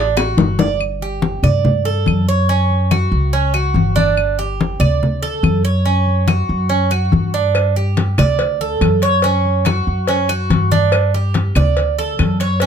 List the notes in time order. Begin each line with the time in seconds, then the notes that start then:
Already playing: A1 D4
0.17 F#4, high bongo, high conga, claves
0.37 G1, low bongo, high conga
0.59 D5, low bongo, high conga
0.80 high conga, claves
1.01 G4, high conga
1.22 high conga
1.43 G2 D5, low conga, claves
1.65 high conga, low conga
1.85 A4, high conga
2.06 F#2, high conga, claves
2.27 C#5, high conga
2.49 C#4, high conga
2.70 high conga
2.91 F#4, high conga, claves
3.12 C#2, high conga
3.33 C#4, high conga
3.54 F#4, high conga, claves
3.74 G1, high conga
3.96 D4, high conga
4.17 high conga, claves
4.39 G4, high conga
4.61 high conga
4.80 D2 D5, low conga, claves
5.03 high conga, low conga
5.22 A4, high conga
5.43 F#2, high conga, claves
5.65 C#5, high conga
5.85 C#4, high conga
6.07 high conga
6.28 F#4, high conga, claves
6.49 F#2, high conga
6.69 C#4, high conga
6.91 F#4, high conga, claves
7.12 G2, high conga
7.34 D4
7.55 cowbell, high conga, claves
7.76 G4, high conga
7.97 cowbell, high conga
8.18 D2 D5, cowbell, low conga, claves
8.39 cowbell, high conga
8.61 A4, high conga
8.81 F#2, cowbell, high conga, claves
9.02 C#5, cowbell, high conga
9.22 C#4, cowbell, high conga
9.45 high conga
9.65 F#4, cowbell, high conga, claves
9.87 F#2, high conga
10.07 C#4, cowbell, high conga
10.29 F#4, high conga, claves
10.50 G2, cowbell, high conga
10.72 D4, high conga
10.92 cowbell, high conga, claves
11.14 G4, high conga
11.34 cowbell, high conga
11.55 D2 D5, cowbell, low conga, claves
11.77 cowbell, high conga
11.99 A4, high conga
12.19 F#2, cowbell, high conga, claves
12.40 C#5, cowbell, high conga
12.60 C#4, cowbell, high conga